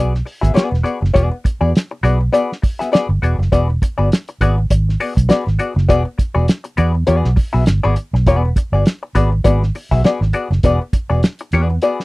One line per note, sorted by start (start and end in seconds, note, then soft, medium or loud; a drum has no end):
0.00 0.21 B1 loud
0.00 0.12 B3 medium
0.00 0.12 F#4 medium
0.00 0.13 G#4 medium
0.00 0.13 D5 medium
0.15 snare soft
0.25 muted hollow-body jazz guitar stroke soft
0.25 open hi-hat medium
0.41 0.53 G#1 medium
0.41 0.53 B3 medium
0.41 0.53 F#4 medium
0.41 0.53 G#4 medium
0.41 0.52 E5 medium
0.41 kick medium
0.41 closed hi-hat medium
0.54 0.76 B3 medium
0.54 0.70 F#4 medium
0.54 0.70 G#4 loud
0.54 0.70 D5 loud
0.54 snare loud
0.54 closed hi-hat medium
0.71 0.83 E1 medium
0.71 muted hollow-body jazz guitar stroke soft
0.71 snare soft
0.83 0.98 B3 medium
0.83 0.98 F#4 medium
0.83 0.98 G#4 medium
0.83 0.98 D5 medium
0.83 closed hi-hat medium
1.01 1.13 F#1 medium
1.01 muted hollow-body jazz guitar stroke soft
1.01 snare soft
1.14 1.29 E1 loud
1.14 1.35 B3 medium
1.14 1.31 F#4 medium
1.14 1.30 G#4 medium
1.14 1.30 D5 loud
1.14 kick loud
1.14 closed hi-hat medium
1.31 muted hollow-body jazz guitar stroke medium
1.44 muted hollow-body jazz guitar stroke soft
1.44 kick loud
1.44 closed hi-hat medium
1.61 1.72 E2 medium
1.61 1.72 B3 soft
1.61 1.72 F#4 soft
1.61 1.71 G#4 medium
1.61 1.71 D5 medium
1.76 snare loud
1.76 closed hi-hat medium
1.91 muted hollow-body jazz guitar stroke medium
2.03 2.28 B1 medium
2.03 2.20 B3 medium
2.03 2.19 F#4 medium
2.03 2.20 G#4 medium
2.03 2.19 D5 medium
2.03 closed hi-hat medium
2.20 muted hollow-body jazz guitar stroke soft
2.33 2.50 B3 medium
2.33 2.50 F#4 medium
2.33 2.50 G#4 medium
2.33 2.50 D5 loud
2.33 closed hi-hat loud
2.52 snare soft
2.62 muted hollow-body jazz guitar stroke soft
2.62 kick loud
2.62 open hi-hat medium
2.79 2.90 B3 medium
2.79 2.90 F#4 soft
2.79 2.90 G#4 medium
2.79 2.90 E5 medium
2.79 snare soft
2.79 closed hi-hat medium
2.92 3.09 B3 medium
2.92 3.09 F#4 medium
2.92 3.09 G#4 loud
2.92 3.08 D5 loud
2.92 snare loud
2.92 closed hi-hat medium
3.09 3.20 G1 medium
3.09 muted hollow-body jazz guitar stroke soft
3.22 3.36 E1 medium
3.22 3.36 B3 medium
3.22 3.36 F#4 medium
3.22 3.36 G#4 medium
3.22 3.36 D5 medium
3.22 closed hi-hat medium
3.38 3.49 F#1 medium
3.38 muted hollow-body jazz guitar stroke soft
3.38 snare soft
3.52 3.77 E1 loud
3.52 3.69 B3 medium
3.52 3.69 F#4 medium
3.52 3.69 G#4 medium
3.52 3.69 D5 loud
3.52 kick loud
3.52 closed hi-hat medium
3.70 muted hollow-body jazz guitar stroke soft
3.82 muted hollow-body jazz guitar stroke soft
3.82 kick medium
3.82 closed hi-hat medium
3.98 4.09 G1 medium
3.98 4.09 B3 medium
3.98 4.09 F#4 medium
3.98 4.09 G#4 medium
3.98 4.08 D5 medium
4.12 snare loud
4.12 closed hi-hat medium
4.28 muted hollow-body jazz guitar stroke soft
4.28 closed hi-hat soft
4.41 4.65 G#1 medium
4.41 4.58 B3 medium
4.41 4.57 F#4 medium
4.41 4.57 G#4 medium
4.41 4.57 D5 medium
4.41 kick medium
4.41 closed hi-hat medium
4.58 muted hollow-body jazz guitar stroke soft
4.70 4.95 G#1 medium
4.70 muted hollow-body jazz guitar stroke soft
4.70 kick medium
4.70 closed hi-hat loud
4.89 snare soft
5.00 5.14 B3 medium
5.00 5.14 F#4 medium
5.00 5.14 G#4 medium
5.00 5.14 D5 medium
5.00 open hi-hat medium
5.15 5.28 B1 medium
5.15 muted hollow-body jazz guitar stroke soft
5.15 kick medium
5.15 closed hi-hat medium
5.29 5.46 B3 medium
5.29 5.46 F#4 medium
5.29 5.45 G#4 medium
5.29 5.44 D5 medium
5.29 muted fingered electric bass stroke soft
5.29 snare loud
5.29 closed hi-hat medium
5.46 5.57 G#1 medium
5.46 muted hollow-body jazz guitar stroke medium
5.46 snare soft
5.59 5.72 B3 medium
5.59 5.73 F#4 medium
5.59 5.73 G#4 medium
5.59 5.73 D5 medium
5.59 closed hi-hat medium
5.75 5.89 F#1 loud
5.75 muted hollow-body jazz guitar stroke soft
5.75 snare soft
5.88 6.03 E1 loud
5.88 6.06 B3 medium
5.88 6.04 F#4 loud
5.88 6.04 G#4 medium
5.88 6.04 D5 loud
5.88 kick loud
5.88 closed hi-hat medium
6.05 muted hollow-body jazz guitar stroke soft
6.18 muted hollow-body jazz guitar stroke soft
6.18 kick medium
6.18 closed hi-hat medium
6.34 6.46 E1 medium
6.34 6.46 B3 medium
6.34 6.46 F#4 medium
6.34 6.45 G#4 medium
6.34 6.45 D5 medium
6.48 snare loud
6.48 closed hi-hat medium
6.64 muted hollow-body jazz guitar stroke soft
6.64 closed hi-hat medium
6.77 7.03 E2 loud
6.77 6.95 B3 medium
6.77 6.94 F#4 medium
6.77 6.94 G#4 medium
6.77 6.93 D5 medium
6.77 closed hi-hat medium
6.94 muted hollow-body jazz guitar stroke soft
7.07 7.22 E2 loud
7.07 7.28 B3 medium
7.07 7.28 F#4 medium
7.07 7.29 G#4 medium
7.07 7.29 D5 loud
7.07 closed hi-hat medium
7.24 7.35 B1 medium
7.24 snare soft
7.36 muted hollow-body jazz guitar stroke soft
7.36 kick loud
7.36 open hi-hat medium
7.53 7.65 B1 medium
7.53 7.64 B3 medium
7.53 7.64 F#4 medium
7.53 7.64 G#4 medium
7.53 7.64 E5 medium
7.66 7.81 G1 medium
7.66 muted hollow-body jazz guitar stroke soft
7.66 snare loud
7.66 closed hi-hat medium
7.83 7.95 G#1 medium
7.83 7.95 B3 medium
7.83 7.96 F#4 medium
7.83 7.96 G#4 medium
7.83 7.96 D5 loud
7.96 muted hollow-body jazz guitar stroke soft
7.96 closed hi-hat medium
8.13 8.24 B1 medium
8.13 muted hollow-body jazz guitar stroke soft
8.13 snare soft
8.26 8.51 E1 loud
8.26 8.48 B3 medium
8.26 8.44 F#4 medium
8.26 8.44 G#4 medium
8.26 8.43 D5 loud
8.26 kick loud
8.26 closed hi-hat medium
8.45 muted hollow-body jazz guitar stroke soft
8.56 muted hollow-body jazz guitar stroke soft
8.56 kick loud
8.56 closed hi-hat medium
8.72 8.83 G1 medium
8.72 8.84 B3 medium
8.72 8.84 F#4 medium
8.72 8.84 G#4 soft
8.72 8.83 D5 medium
8.86 snare loud
8.86 closed hi-hat medium
9.03 muted hollow-body jazz guitar stroke medium
9.15 9.40 G#1 loud
9.15 9.32 B3 medium
9.15 9.31 F#4 medium
9.15 9.31 G#4 medium
9.15 9.31 D5 medium
9.15 kick medium
9.15 closed hi-hat medium
9.32 muted hollow-body jazz guitar stroke soft
9.44 9.69 G#1 loud
9.44 9.62 B3 medium
9.44 9.62 F#4 medium
9.44 9.62 G#4 medium
9.44 9.62 D5 medium
9.44 kick medium
9.44 closed hi-hat medium
9.63 snare soft
9.75 muted hollow-body jazz guitar stroke soft
9.75 open hi-hat medium
9.91 10.02 B1 medium
9.91 10.02 B3 medium
9.91 10.02 F#4 medium
9.91 10.02 G#4 medium
9.91 10.02 E5 medium
9.91 kick medium
10.04 10.21 B3 medium
10.04 10.21 F#4 medium
10.04 10.22 G#4 medium
10.04 10.21 D5 medium
10.04 muted fingered electric bass stroke soft
10.04 snare loud
10.04 closed hi-hat medium
10.21 10.32 G#1 medium
10.21 muted hollow-body jazz guitar stroke medium
10.21 snare soft
10.33 10.47 B3 medium
10.33 10.47 F#4 medium
10.33 10.47 G#4 medium
10.33 10.48 D5 medium
10.33 closed hi-hat medium
10.50 10.61 F#1 medium
10.50 muted hollow-body jazz guitar stroke medium
10.50 snare soft
10.63 10.77 E1 loud
10.63 10.81 B3 medium
10.63 10.81 F#4 medium
10.63 10.80 G#4 medium
10.63 10.80 D5 loud
10.63 kick loud
10.63 closed hi-hat medium
10.81 muted hollow-body jazz guitar stroke soft
10.93 muted hollow-body jazz guitar stroke soft
10.93 kick loud
10.93 closed hi-hat medium
11.10 11.21 E1 medium
11.10 11.21 B3 medium
11.10 11.21 F#4 medium
11.10 11.20 G#4 medium
11.10 11.20 D5 medium
11.23 snare loud
11.23 closed hi-hat medium
11.39 muted hollow-body jazz guitar stroke medium
11.39 closed hi-hat medium
11.52 11.77 E2 medium
11.52 11.74 B3 medium
11.52 11.69 F#4 medium
11.52 11.69 G#4 medium
11.52 11.68 D5 medium
11.52 closed hi-hat medium
11.70 muted hollow-body jazz guitar stroke medium
11.82 11.99 B3 medium
11.82 11.99 F#4 medium
11.82 12.00 G#4 medium
11.82 12.00 D5 medium
11.82 closed hi-hat medium
12.00 snare soft